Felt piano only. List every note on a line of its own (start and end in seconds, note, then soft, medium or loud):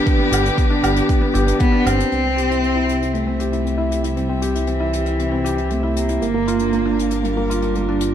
0.00 0.07 B3 medium
0.00 0.45 D4 medium
0.00 0.32 G4 medium
0.07 0.18 B3 medium
0.19 0.27 B3 loud
0.32 0.44 G4 loud
0.45 0.57 D4 medium
0.57 0.70 B3 medium
0.70 0.83 D4 loud
0.83 0.96 G4 medium
0.96 1.08 D4 medium
1.08 1.19 B3 medium
1.21 1.29 B3 medium
1.34 1.46 G4 loud
1.46 1.59 D4 medium
1.59 1.72 B3 medium
1.72 1.85 D4 medium
1.85 1.98 G4 medium
1.98 2.11 D4 medium
2.12 2.23 C4 medium
2.24 2.32 C4 medium
2.37 2.49 G4 medium
2.50 2.62 E4 medium
2.63 2.75 C4 medium
2.75 2.88 E4 medium
2.88 3.01 G4 medium
3.02 3.14 E4 medium
3.14 3.25 C4 medium
3.27 3.34 C4 medium
3.40 3.52 G4 medium
3.52 3.65 E4 medium
3.65 3.78 C4 medium
3.78 3.90 E4 medium
3.91 4.03 G4 medium
4.04 4.16 E4 medium
4.16 4.28 C4 medium
4.29 4.37 C4 medium
4.42 4.54 G4 medium
4.55 4.67 E4 medium
4.67 4.80 C4 medium
4.80 4.93 E4 medium
4.93 5.06 G4 medium
5.06 5.18 E4 medium
5.19 5.30 C4 medium
5.31 5.39 C4 medium
5.44 5.57 G4 medium
5.57 5.70 E4 medium
5.70 5.83 C4 medium
5.83 5.96 E4 medium
5.96 6.08 G4 medium
6.09 6.21 E4 medium
6.22 6.33 A#3 medium
6.34 6.42 A#3 medium
6.47 6.60 F4 medium
6.60 6.73 D4 medium
6.73 6.85 A#3 medium
6.85 6.98 D4 medium
6.98 7.11 F4 medium
7.11 7.24 D4 medium
7.24 7.35 A#3 medium
7.37 7.44 A#3 medium
7.50 7.62 F4 medium
7.63 7.75 D4 medium
7.76 7.88 A#3 medium
7.88 8.01 D4 medium
8.01 8.14 F4 medium